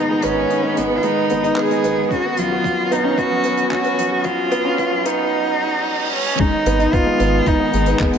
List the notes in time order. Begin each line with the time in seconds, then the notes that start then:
Already playing: D#3 G#3 B3 D#4 B4, riser
0.00 D#4
0.10 G#3
0.22 G#1 B3 C#4, closed hi-hat
0.50 D#4, closed hi-hat
0.63 B3
0.76 G#1 G#3 B3, closed hi-hat
0.90 B4
0.97 F4
1.03 G#3 D#4, closed hi-hat
1.30 G#1 B3, closed hi-hat
1.44 D#4, closed hi-hat
1.56 B3 G#4, clap
1.71 G#3, closed hi-hat
1.84 G#1 B3, closed hi-hat
2.11 C#4 F#4, kick, closed hi-hat
2.25 B3
2.37 B1 F#3 F4, closed hi-hat
2.52 F#4
2.64 F#3, kick, closed hi-hat
2.91 B1 B3 D#4, closed hi-hat
3.04 C#4
3.18 B3 F#4, kick, closed hi-hat
3.31 F#3
3.43 B1 B3, closed hi-hat
3.57 closed hi-hat
3.71 C#4 F#4, kick, clap
3.84 B3, closed hi-hat
3.98 B1 F#3, closed hi-hat
4.12 F#4
4.24 F#3 F4, kick, closed hi-hat
4.51 B1 B3, closed hi-hat
4.65 C#4
4.78 B3, kick, closed hi-hat
4.93 F#3
5.05 B1 B3 D#4, closed hi-hat
5.32 reverse cymbal
6.14 C#4
6.39 D#3 G#3 B3 D#4, kick, closed hi-hat
6.66 G#1 B3, closed hi-hat
6.79 D#4, closed hi-hat
6.93 B3 F4, kick, closed hi-hat
7.06 G#3
7.20 G#1 B3, closed hi-hat
7.46 D#4, kick, closed hi-hat
7.60 B3
7.73 G#1 G#3, closed hi-hat
7.86 B4, closed hi-hat
7.99 G#3 B3, kick, clap
8.13 closed hi-hat